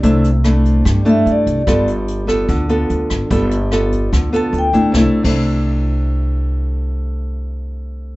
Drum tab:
CC |----------------|----------------|----------------|---x------------|
HH |x-x-x-x-x-x-x-x-|x-x-x-x-x-x-x-x-|x-x-x-x-x-x-x-x-|----------------|
SD |----r---r-------|r-----r-------r-|----r---r-------|o---------------|
BD |o-----o-o-----o-|o-----o-o-----o-|o-----o-o-----o-|o--o------------|

CC |----------------|
HH |----------------|
SD |----------------|
BD |----------------|